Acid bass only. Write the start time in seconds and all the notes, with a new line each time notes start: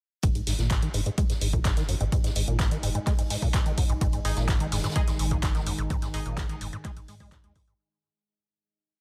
0.23 G#2
0.35 G#2
0.47 G#2
0.59 A#2
0.71 G#2
0.82 D#3
0.94 G#2
1.06 G#2
1.18 G#3
1.30 G#2
1.41 G#2
1.53 A#2
1.65 G#2
1.77 D#3
1.89 F#2
2.01 G#2
2.12 G#2
2.24 G#2
2.36 G#2
2.48 A#2
2.60 G#2
2.71 D#3
2.83 G#2
2.95 G#2
3.07 G#3
3.19 G#2
3.30 G#2
3.42 A#2
3.54 G#2
3.66 D#3
3.78 F#2
3.90 G#2
4.01 G#2
4.13 G#2
4.25 G#2
4.37 A#2
4.48 G#2
4.60 D#3
4.72 G#2
4.84 G#2
4.96 G#3
5.08 G#2
5.19 G#2
5.31 A#2
5.43 G#2
5.55 D#3
5.67 F#2
5.79 G#2
5.90 G#2
6.02 G#2
6.14 G#2
6.26 A#2
6.38 G#2
6.49 D#3
6.61 G#2
6.73 G#2
6.85 G#3
6.97 G#2
7.08 G#3
7.20 G#3
7.32 G#2
7.44 G#3
7.56 G#2
7.68 G#2